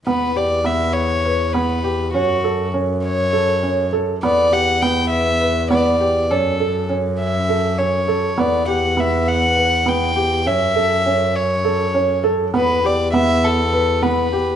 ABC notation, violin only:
X:1
M:7/8
L:1/8
Q:1/4=101
K:Edor
V:1 name="Violin"
B d e c2 B2 | F2 z c3 z | d f g e2 d2 | A2 z e2 c2 |
d f e f2 g2 | e3 c3 z | B d e A2 B2 |]